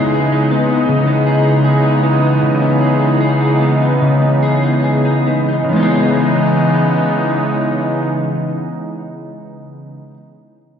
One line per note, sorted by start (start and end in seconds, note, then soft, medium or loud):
0.00 0.87 C#3 medium
0.00 5.66 C#3 medium
0.00 5.66 E3 medium
0.00 5.65 G#3 medium
0.00 0.51 B3 soft
0.00 5.66 B3 medium
0.00 0.32 D#4 soft
0.00 5.65 D#4 medium
0.00 0.13 G#4 medium
0.14 1.26 G#4 medium
0.32 0.69 D#4 medium
0.51 1.07 B3 medium
0.70 1.45 D#4 soft
0.88 2.41 C#3 medium
1.07 2.03 B3 medium
1.26 1.64 G#4 medium
1.45 1.83 D#4 medium
1.64 2.81 G#4 medium
1.84 2.22 D#4 soft
2.03 2.61 B3 soft
2.22 3.00 D#4 soft
2.42 4.00 C#3 medium
2.61 3.60 B3 medium
2.81 3.20 G#4 medium
3.01 3.40 D#4 soft
3.21 4.42 G#4 medium
3.41 3.81 D#4 medium
3.61 4.21 B3 soft
3.81 4.63 D#4 soft
4.01 5.63 C#3 medium
4.22 5.26 B3 medium
4.42 4.84 G#4 medium
4.63 5.05 D#4 soft
4.84 5.82 G#4 medium
5.05 5.48 D#4 medium
5.27 5.76 B3 soft
5.48 5.79 D#4 soft
5.64 9.99 C#3 medium
5.69 9.94 C#3 medium
5.69 10.03 E3 medium
5.69 9.94 E3 medium
5.69 9.94 G#3 medium
5.69 10.07 G#3 medium
5.69 9.94 B3 medium
5.69 9.94 D#4 medium
5.76 10.10 B3 medium
5.76 10.14 D#4 medium
5.83 10.17 G#4 medium